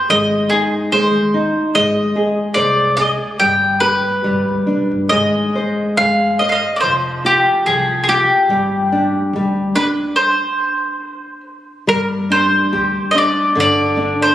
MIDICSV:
0, 0, Header, 1, 4, 480
1, 0, Start_track
1, 0, Tempo, 828729
1, 57, Time_signature, 2, 2, 24, 8
1, 1976, Tempo, 858369
1, 3896, Tempo, 832178
1, 5816, Tempo, 857143
1, 7256, Tempo, 831025
1, 8182, End_track
2, 0, Start_track
2, 0, Title_t, "Mandolin"
2, 0, Program_c, 0, 25
2, 58, Note_on_c, 0, 75, 79
2, 287, Note_on_c, 0, 68, 70
2, 306, Note_off_c, 0, 75, 0
2, 353, Note_off_c, 0, 68, 0
2, 534, Note_on_c, 0, 72, 75
2, 1011, Note_off_c, 0, 72, 0
2, 1013, Note_on_c, 0, 75, 87
2, 1470, Note_off_c, 0, 75, 0
2, 1473, Note_on_c, 0, 74, 82
2, 1716, Note_off_c, 0, 74, 0
2, 1719, Note_on_c, 0, 75, 84
2, 1786, Note_off_c, 0, 75, 0
2, 1967, Note_on_c, 0, 79, 82
2, 2191, Note_off_c, 0, 79, 0
2, 2195, Note_on_c, 0, 71, 82
2, 2915, Note_off_c, 0, 71, 0
2, 2917, Note_on_c, 0, 75, 77
2, 3409, Note_on_c, 0, 77, 84
2, 3423, Note_off_c, 0, 75, 0
2, 3636, Note_off_c, 0, 77, 0
2, 3643, Note_on_c, 0, 75, 79
2, 3690, Note_off_c, 0, 75, 0
2, 3698, Note_on_c, 0, 77, 67
2, 3714, Note_on_c, 0, 75, 75
2, 3736, Note_off_c, 0, 77, 0
2, 3847, Note_off_c, 0, 75, 0
2, 3850, Note_on_c, 0, 74, 60
2, 3871, Note_off_c, 0, 74, 0
2, 3874, Note_on_c, 0, 72, 74
2, 3942, Note_off_c, 0, 72, 0
2, 4136, Note_on_c, 0, 67, 68
2, 4364, Note_off_c, 0, 67, 0
2, 4367, Note_on_c, 0, 68, 71
2, 4576, Note_off_c, 0, 68, 0
2, 4583, Note_on_c, 0, 68, 59
2, 4610, Note_off_c, 0, 68, 0
2, 4613, Note_on_c, 0, 67, 78
2, 5575, Note_on_c, 0, 71, 78
2, 5601, Note_off_c, 0, 67, 0
2, 5639, Note_off_c, 0, 71, 0
2, 5807, Note_on_c, 0, 72, 65
2, 6505, Note_off_c, 0, 72, 0
2, 6775, Note_on_c, 0, 70, 68
2, 6840, Note_off_c, 0, 70, 0
2, 7016, Note_on_c, 0, 72, 76
2, 7465, Note_off_c, 0, 72, 0
2, 7467, Note_on_c, 0, 75, 59
2, 7502, Note_off_c, 0, 75, 0
2, 7506, Note_on_c, 0, 74, 74
2, 7743, Note_off_c, 0, 74, 0
2, 7750, Note_on_c, 0, 74, 80
2, 8108, Note_off_c, 0, 74, 0
2, 8110, Note_on_c, 0, 72, 73
2, 8182, Note_off_c, 0, 72, 0
2, 8182, End_track
3, 0, Start_track
3, 0, Title_t, "Nylon-string guitar"
3, 0, Program_c, 1, 24
3, 64, Note_on_c, 1, 56, 54
3, 299, Note_on_c, 1, 63, 49
3, 529, Note_off_c, 1, 56, 0
3, 530, Note_off_c, 1, 63, 0
3, 536, Note_on_c, 1, 56, 53
3, 767, Note_off_c, 1, 56, 0
3, 776, Note_on_c, 1, 63, 47
3, 1007, Note_off_c, 1, 63, 0
3, 1013, Note_on_c, 1, 56, 59
3, 1249, Note_on_c, 1, 68, 51
3, 1480, Note_off_c, 1, 68, 0
3, 1482, Note_on_c, 1, 72, 55
3, 1720, Note_off_c, 1, 72, 0
3, 1725, Note_on_c, 1, 68, 47
3, 1952, Note_off_c, 1, 56, 0
3, 1964, Note_off_c, 1, 68, 0
3, 1970, Note_on_c, 1, 55, 53
3, 2200, Note_on_c, 1, 67, 47
3, 2433, Note_off_c, 1, 55, 0
3, 2437, Note_off_c, 1, 67, 0
3, 2440, Note_on_c, 1, 55, 55
3, 2678, Note_on_c, 1, 62, 44
3, 2913, Note_off_c, 1, 55, 0
3, 2919, Note_off_c, 1, 62, 0
3, 2927, Note_on_c, 1, 56, 54
3, 3174, Note_on_c, 1, 72, 46
3, 3409, Note_off_c, 1, 72, 0
3, 3410, Note_off_c, 1, 56, 0
3, 3417, Note_on_c, 1, 56, 51
3, 3650, Note_off_c, 1, 56, 0
3, 3654, Note_on_c, 1, 72, 45
3, 3885, Note_on_c, 1, 53, 56
3, 3887, Note_off_c, 1, 72, 0
3, 4128, Note_on_c, 1, 65, 48
3, 4365, Note_off_c, 1, 65, 0
3, 4369, Note_off_c, 1, 53, 0
3, 4376, Note_on_c, 1, 53, 51
3, 4607, Note_off_c, 1, 53, 0
3, 4612, Note_on_c, 1, 65, 48
3, 4846, Note_off_c, 1, 65, 0
3, 4851, Note_on_c, 1, 55, 59
3, 5095, Note_on_c, 1, 62, 48
3, 5327, Note_off_c, 1, 62, 0
3, 5338, Note_off_c, 1, 55, 0
3, 5345, Note_on_c, 1, 55, 57
3, 5572, Note_off_c, 1, 55, 0
3, 5573, Note_on_c, 1, 62, 50
3, 5807, Note_off_c, 1, 62, 0
3, 6768, Note_on_c, 1, 55, 57
3, 7006, Note_on_c, 1, 62, 46
3, 7242, Note_off_c, 1, 62, 0
3, 7246, Note_on_c, 1, 67, 56
3, 7485, Note_off_c, 1, 67, 0
3, 7487, Note_on_c, 1, 62, 48
3, 7710, Note_off_c, 1, 55, 0
3, 7723, Note_off_c, 1, 62, 0
3, 7723, Note_on_c, 1, 50, 58
3, 7964, Note_on_c, 1, 62, 50
3, 8182, Note_off_c, 1, 50, 0
3, 8182, Note_off_c, 1, 62, 0
3, 8182, End_track
4, 0, Start_track
4, 0, Title_t, "Upright bass"
4, 0, Program_c, 2, 32
4, 56, Note_on_c, 2, 32, 75
4, 368, Note_off_c, 2, 32, 0
4, 537, Note_on_c, 2, 39, 74
4, 847, Note_off_c, 2, 39, 0
4, 1017, Note_on_c, 2, 32, 79
4, 1327, Note_off_c, 2, 32, 0
4, 1490, Note_on_c, 2, 36, 74
4, 1805, Note_off_c, 2, 36, 0
4, 1978, Note_on_c, 2, 31, 76
4, 2286, Note_off_c, 2, 31, 0
4, 2452, Note_on_c, 2, 31, 65
4, 2530, Note_off_c, 2, 31, 0
4, 2574, Note_on_c, 2, 38, 64
4, 2681, Note_off_c, 2, 38, 0
4, 2688, Note_on_c, 2, 35, 65
4, 2798, Note_off_c, 2, 35, 0
4, 2815, Note_on_c, 2, 31, 66
4, 2923, Note_off_c, 2, 31, 0
4, 2934, Note_on_c, 2, 32, 79
4, 3248, Note_off_c, 2, 32, 0
4, 3410, Note_on_c, 2, 31, 68
4, 3723, Note_off_c, 2, 31, 0
4, 3892, Note_on_c, 2, 29, 80
4, 4206, Note_off_c, 2, 29, 0
4, 4372, Note_on_c, 2, 36, 70
4, 4684, Note_off_c, 2, 36, 0
4, 4844, Note_on_c, 2, 31, 80
4, 5160, Note_off_c, 2, 31, 0
4, 5331, Note_on_c, 2, 38, 75
4, 5644, Note_off_c, 2, 38, 0
4, 6775, Note_on_c, 2, 31, 78
4, 7087, Note_off_c, 2, 31, 0
4, 7255, Note_on_c, 2, 38, 74
4, 7412, Note_off_c, 2, 38, 0
4, 7729, Note_on_c, 2, 31, 89
4, 8043, Note_off_c, 2, 31, 0
4, 8182, End_track
0, 0, End_of_file